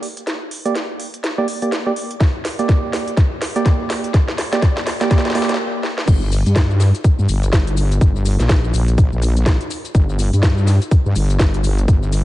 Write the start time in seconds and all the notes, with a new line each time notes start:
0.03 open hi-hat
0.17 closed hi-hat
0.27 snare, closed hi-hat
0.51 open hi-hat
0.65 A#3 G4 D5, closed hi-hat
0.75 snare, closed hi-hat
1.00 open hi-hat
1.14 closed hi-hat
1.24 snare, closed hi-hat
1.38 A#3 G4 D5
1.48 open hi-hat
1.62 A#3 G4 D5, closed hi-hat
1.72 snare, closed hi-hat
1.86 A#3 G4 D5
1.96 open hi-hat
2.11 closed hi-hat
2.20 kick, snare, closed hi-hat
2.45 snare, open hi-hat
2.59 A#3 G4 D5, closed hi-hat
2.69 kick, snare, closed hi-hat
2.93 snare, open hi-hat
3.08 closed hi-hat
3.17 kick, snare, closed hi-hat
3.42 snare, open hi-hat
3.56 A#3 G4 D5, closed hi-hat
3.66 kick, snare, closed hi-hat
3.90 snare, open hi-hat
4.04 closed hi-hat
4.14 kick, snare, closed hi-hat
4.28 snare
4.38 snare, open hi-hat
4.53 A#3 G4 D5, snare, closed hi-hat
4.62 kick, snare, closed hi-hat
4.77 snare
4.87 snare, open hi-hat
5.01 A#3 G4 D5, snare, closed hi-hat
5.11 A#3 G4 D5, kick, snare, closed hi-hat
5.18 snare
5.25 snare
5.30 snare
5.35 A#3 G4 D5, snare, open hi-hat
5.42 snare
5.49 snare, closed hi-hat
5.54 snare
5.83 snare
5.98 snare
6.08 G1, kick, closed hi-hat, crash, shaker
6.22 shaker
6.32 open hi-hat, shaker
6.46 G2, closed hi-hat, shaker
6.56 kick, snare, closed hi-hat, shaker
6.71 shaker
6.80 snare, open hi-hat, shaker
6.95 closed hi-hat, shaker
7.04 kick, closed hi-hat, shaker
7.19 G2, shaker
7.29 G1, open hi-hat, shaker
7.43 closed hi-hat, shaker
7.53 G1, kick, snare, closed hi-hat, shaker
7.67 closed hi-hat, shaker
7.77 open hi-hat, shaker
7.92 closed hi-hat, shaker
8.01 G1, kick, closed hi-hat, shaker
8.16 shaker
8.26 open hi-hat, shaker
8.40 A#1, snare, closed hi-hat, shaker
8.49 kick, snare, closed hi-hat, shaker
8.64 shaker
8.74 A#1, open hi-hat, shaker
8.88 closed hi-hat, shaker
8.98 kick, closed hi-hat, shaker
9.12 A#1, shaker
9.22 open hi-hat, shaker
9.37 closed hi-hat, shaker
9.46 kick, snare, closed hi-hat, shaker
9.61 closed hi-hat, shaker
9.71 open hi-hat, shaker
9.85 closed hi-hat, shaker
9.95 G1, kick, closed hi-hat, shaker
10.09 shaker
10.19 open hi-hat, shaker
10.33 G2, closed hi-hat, shaker
10.43 kick, snare, closed hi-hat, shaker
10.58 shaker
10.67 snare, open hi-hat, shaker
10.82 closed hi-hat, shaker
10.91 kick, closed hi-hat, shaker
11.06 G2, shaker
11.16 G1, open hi-hat, shaker
11.30 closed hi-hat, shaker
11.39 G1, kick, snare, closed hi-hat, shaker
11.54 closed hi-hat, shaker
11.64 open hi-hat, shaker
11.78 closed hi-hat, shaker
11.88 G1, kick, closed hi-hat, shaker
12.03 shaker
12.12 open hi-hat, shaker